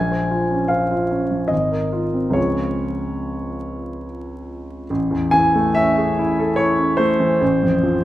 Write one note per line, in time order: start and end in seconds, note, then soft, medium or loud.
0.00 1.47 A#1 soft
0.00 0.69 G#5 medium
0.12 0.43 C5 soft
0.31 0.62 F4 soft
0.51 0.83 C#4 soft
0.68 1.03 C5 soft
0.68 1.50 F5 medium
0.91 1.23 F4 soft
1.11 1.43 C#4 soft
1.31 1.52 F3 soft
1.48 2.34 G#1 soft
1.48 2.35 D#5 medium
1.71 2.06 A#4 soft
1.93 2.27 F4 soft
2.14 2.31 C4 soft
2.30 4.82 C#2 soft
2.30 4.83 F3 soft
2.30 4.84 C4 soft
2.30 4.84 F4 soft
2.30 4.84 G#4 soft
2.30 4.04 C#5 medium
4.90 7.37 A1 soft
5.11 5.45 E2 soft
5.31 5.67 E3 soft
5.31 5.74 G#5 medium
5.55 5.88 A3 soft
5.75 6.09 C#4 soft
5.75 6.57 E5 medium
5.97 6.29 G#4 soft
6.19 6.50 E4 soft
6.39 6.71 A4 soft
6.56 6.91 E4 soft
6.56 6.98 C#5 medium
6.79 7.11 C#4 soft
6.97 7.33 A3 soft
6.97 8.04 C5 medium
7.20 7.41 E3 soft
7.41 8.04 A1 soft
7.63 7.98 F2 soft
7.83 8.04 F3 soft